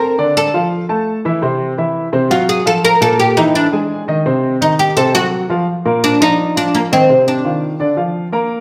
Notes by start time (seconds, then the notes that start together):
Already playing: C4 A#4 C5 A5
0.18 D3 D4 D5
0.37 A4
0.54 F3 F4 F5
0.89 A3 A4 A5
1.25 E3 E4 E5
1.42 C3 C4 C5
1.78 E3 E4 E5
2.13 C3 C4 C5
2.30 F#3 F4 F#4 F#5
2.49 G#4
2.66 F3 F4 A4 F5
2.85 A#4
3.01 A#2 A#3 A4 A#4
3.20 G4
3.37 E3 D#4 E4 E5
3.55 D4
3.73 G#3 G#4 G#5
4.08 D#3 D#4 D#5
4.26 C3 C4 C5
4.61 D#3 D#4 D#5
4.79 G4
4.97 C3 C4 A4 C5
5.14 F#3 F#4 F#5
5.49 F3 F4 F5
5.85 A#2 A#3 A#4
6.04 D4
6.20 F3 D#4 F4 D5
6.56 F3 D4 F4 F5
6.75 A#3
6.91 D#3 C4 D#4 D#5
7.09 C3 C4 C5
7.28 D4
7.44 D#3 F4 F5
7.80 D3 D4 D5
7.97 F3 F4 F5
8.32 A#3 A#4 A#5